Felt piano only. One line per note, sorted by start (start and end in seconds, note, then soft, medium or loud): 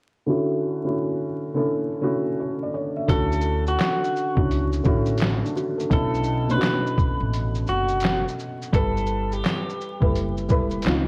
0.26 0.60 D3 loud
0.26 0.60 C#4 medium
0.26 0.61 E4 medium
0.26 0.61 F#4 medium
0.84 1.25 D3 medium
0.84 1.26 C#4 medium
0.84 1.26 E4 medium
0.84 1.27 F#4 medium
1.54 1.86 D3 medium
1.54 1.87 C#4 medium
1.54 1.87 E4 medium
1.54 1.88 A4 medium
2.01 2.69 D3 medium
2.01 2.69 C#4 medium
2.01 2.70 E4 medium
2.01 2.70 F#4 medium
2.40 2.61 C#5 medium
2.63 2.74 D5 medium
2.74 2.96 C#5 medium
2.96 3.30 E5 medium
3.07 3.86 D3 medium
3.07 3.86 C#4 medium
3.07 3.87 E4 medium
3.07 3.87 F#4 medium
4.35 4.69 C#4 medium
4.35 4.68 D4 medium
4.35 4.69 E4 medium
4.35 4.70 F#4 medium
4.83 5.51 D3 medium
4.83 5.20 C#4 medium
4.83 5.21 E4 medium
4.83 5.21 F#4 medium
5.44 5.55 D4 medium
5.56 5.78 F#4 medium
5.78 6.12 A4 medium
5.90 6.24 B2 medium
5.90 6.24 A3 medium
5.90 6.25 C#4 medium
5.90 6.25 D4 medium
5.90 6.25 E4 loud
6.48 7.31 B2 medium
6.48 7.31 A3 medium
6.48 7.31 C#4 medium
6.48 7.32 D4 medium
6.48 6.55 E4 medium
6.58 7.35 F#4 medium
8.72 9.51 G3 medium
8.72 9.51 E4 medium
8.72 9.52 A4 medium
8.72 9.52 B4 loud
10.00 10.33 G3 medium
10.00 10.33 E4 medium
10.00 10.34 A4 medium
10.00 10.34 B4 medium
10.48 10.84 G3 medium
10.48 10.85 E4 medium
10.48 10.85 A4 medium
10.48 10.86 B4 medium
10.85 11.08 C#3 medium
10.85 11.08 C4 medium
10.85 11.08 D#4 medium
10.85 11.08 F4 medium